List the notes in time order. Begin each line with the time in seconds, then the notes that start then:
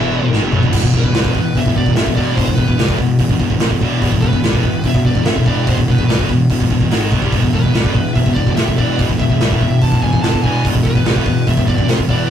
Already playing: E1 E2 B2 E3 E5
0.21 E1 E2 B2
0.30 G#1 G#2 D#3, snare
0.42 F1 F2 C3
0.51 B1 B2 F#3, mid tom
0.62 E1 E2 B2, floor tom
0.72 E1 E2 B2, kick, crash
0.83 E1 E2 B2, kick
0.94 E1 E2 B2 B4, kick
1.04 E1 E2 B2, kick
1.13 C2 C3 G3, snare, open hi-hat
1.24 E1 E2 B2, kick
1.35 E1 E2 B2, kick
1.55 E1 E2 B2 E5, kick, open hi-hat
1.65 E1 E2 B2, kick
1.76 E1 E2 B2 D5, kick
1.85 E1 E2 B2, kick
1.96 F1 F2 C3 E5, snare, open hi-hat
2.07 E1 E2 B2, kick
2.16 E1 E2 B2 E3 D5, kick
2.35 E1 E2 B2 C5, kick, open hi-hat
2.47 E1 E2 B2, kick
2.55 E1 E2 B2 B4, kick
2.68 E1 E2 B2, kick
2.78 C2 C3 G3, snare, open hi-hat
2.88 E1 E2 B2, kick
2.98 E1 E2 B2, kick
3.19 E1 E2 B2, kick, open hi-hat
3.29 E1 E2 B2, kick
3.40 E1 E2 B2, kick
3.50 E1 E2 B2, kick
3.60 F1 F2 C3, snare, open hi-hat
3.71 E1 E2 B2, kick
3.81 E1 E2 B2 E3, kick
4.02 E1 E2 B2, kick, open hi-hat
4.12 E1 E2 B2, kick
4.21 E1 E2 B2 B4, kick
4.33 E1 E2 B2, kick
4.43 C2 C3 G3, snare, open hi-hat
4.53 E1 E2 B2, kick
4.63 E1 E2 B2, kick
4.84 E1 E2 B2 E5, kick, open hi-hat
4.94 E1 E2 B2, kick
5.05 E1 E2 B2 D5, kick
5.15 E1 E2 B2, kick
5.25 F1 F2 C3 E5, snare, open hi-hat
5.36 E1 E2 B2, kick
5.46 E1 E2 B2 E3 D5, kick
5.66 E1 E2 B2 C5, kick, open hi-hat
5.77 E1 E2 B2, kick
5.87 E1 E2 B2 B4, kick
5.98 E1 E2 B2, kick
6.08 C2 C3 G3, snare, open hi-hat
6.18 E1 E2 B2, kick
6.29 E1 E2 B2, kick
6.50 E1 E2 B2, kick, open hi-hat
6.60 E1 E2 B2, kick
6.70 E1 E2 B2, kick
6.81 E1 E2 B2, kick
6.91 G#1 G#2 D#3 G#3, snare, open hi-hat
7.12 B1 B2 F#3, kick
7.22 C2 C3 G3, kick
7.32 E1 E2 B2, kick, open hi-hat
7.43 E1 E2 B2, kick
7.53 E1 E2 B2 B4, kick
7.63 E1 E2 B2, kick
7.74 C2 C3 G3, snare, open hi-hat
7.85 E1 E2 B2, kick
7.95 E1 E2 B2, kick
8.13 E1 E5, kick, open hi-hat
8.18 E2 B2
8.26 E1 E2 B2, kick
8.34 E1 D5, kick
8.38 E2 B2
8.47 E1 E2 B2, kick
8.56 F1 F2 C3 E5, snare, open hi-hat
8.68 E1 E2 B2, kick
8.77 E1 E2 B2 E3 D5, kick
8.99 E1 E2 B2, kick, open hi-hat
9.09 E1 E2 B2, kick
9.19 E1 E2 B2 E5, kick
9.30 E1 E2 B2, kick
9.40 C2 C3 G3, snare, open hi-hat
9.51 E1 E2 B2, kick
9.61 E1 E2 B2, kick
9.82 E1 E2 B2 A5, kick, open hi-hat
9.92 E1 E2 B2, kick
10.02 E1 E2 B2 G#5, kick
10.13 E1 E2 B2, kick
10.22 F1 F2 C3 A5, snare, open hi-hat
10.33 E1 E2 B2, kick
10.43 E1 E2 B2 E3 G#5, kick
10.64 E1 E2 B2, kick, open hi-hat
10.75 E1 E2 B2, kick
10.84 E1 E2 B2 B4, kick
10.95 E1 E2 B2, kick
11.06 C2 C3 G3, snare, open hi-hat
11.16 E1 E2 B2, kick
11.26 E1 E2 B2, kick
11.47 E1 E2 B2 E5, kick, open hi-hat
11.57 E1 E2 B2, kick
11.67 E1 E2 B2 D5, kick
11.78 E1 E2 B2, kick
11.88 F1 F2 C3 C5, snare, open hi-hat
11.99 E1 E2 B2, kick
12.09 E1 E2 B2 E3 D5, kick